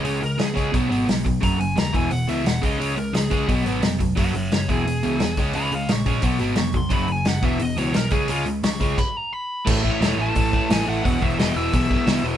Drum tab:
CC |--------|--------|--------|--------|
HH |oooooooo|oooooooo|oooooooo|oooooooo|
SD |--o---o-|--o---o-|--o---o-|--o---o-|
BD |---oo--o|o--o---o|---oo--o|o--o---o|

CC |--------|--------|----x---|x-------|
HH |oooooooo|oooooooo|oooo----|--o-o-o-|
SD |--o---o-|--o---o-|--o-----|--o---o-|
BD |---oo--o|o--o---o|---oo---|oo--oo--|

CC |--------|
HH |o-o-o-o-|
SD |--o---o-|
BD |oo--oo--|